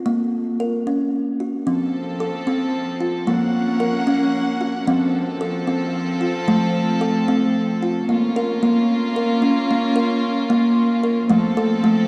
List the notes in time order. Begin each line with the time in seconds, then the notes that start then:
0.06 A#3
0.60 A#4
0.87 C#4
1.40 F#4
1.67 F3 C4 A4
2.20 A4
2.47 C4
3.01 F4
3.27 F3 A#3 C#4 F#5
3.80 A#4
4.07 C#4
4.61 F#4
4.86 F3 C4 A4
5.41 A4
5.67 C4
6.21 F4
6.48 F3 A3
7.01 A4
7.28 C4
7.83 F4
8.08 A#3 C#4 F4
8.36 A#4
8.63 A#3
9.16 A#4
9.42 C#4
9.71 A#3
9.96 A#4
10.50 A#3
11.04 A#4
11.29 F3 A3 C4 A4
11.57 A4
11.84 A3